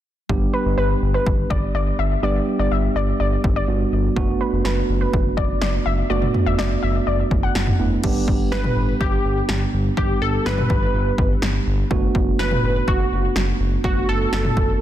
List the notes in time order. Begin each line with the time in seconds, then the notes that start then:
0.29 G1 G3 B3 D4 G4, kick
0.54 B4
0.66 G1
0.78 G1 B4
1.02 G1
1.14 B4
1.26 G1, kick
1.50 G1 D5, kick
1.75 G1 D5
1.99 G1 E5
2.23 G1 G3 B3 D4 G4 D5
2.59 G1 D5
2.71 G1 E5
2.95 G1 D5
3.20 G1 D5
3.44 G1, kick
3.56 D5
3.68 G1 G3 B3 D4 F#4
3.92 G1
4.16 F#1 A3 B3 D4 F#4, kick
4.41 B4
4.53 F#1
4.65 F#1 B4, snare
4.89 F#1
5.01 B4
5.13 F#1, kick
5.37 F#1 D5, kick
5.62 F#1 D5, snare
5.86 F#1 E5
6.10 F#1 A3 B3 D4 F#4 D5
6.22 mid tom
6.34 mid tom
6.46 F#1 E5
6.58 F#1 D5, snare
6.83 F#1 E5
7.07 F#1 D5
7.31 F#1, kick
7.43 F#5
7.55 F#1, snare
7.67 mid tom
7.79 F#1 A3 B3 D4 E4
8.04 G1 G3 B3 D4 G4, kick, crash
8.28 G1, kick
8.52 G1 B4, snare
8.64 mid tom
8.76 G1
9.00 G1 G4, kick
9.25 G1
9.49 G1, snare
9.73 G1
9.97 G1 G3 B3 D4 G4, kick
10.21 G1 A4
10.46 G1 B4, snare
10.58 mid tom
10.70 G1, kick
10.94 G1
11.18 G1, kick
11.42 G1, snare
11.67 G1
11.91 F#1 A3 B3 D4 F#4, kick
12.15 F#1, kick
12.39 F#1 B4, snare
12.51 mid tom
12.63 F#1
12.88 F#1 F#4, kick
13.12 F#1
13.36 F#1, snare
13.60 F#1
13.84 F#1 A3 B3 D4 F#4, kick
14.08 F#1 A4
14.32 F#1 A4, snare
14.45 mid tom
14.57 F#1, kick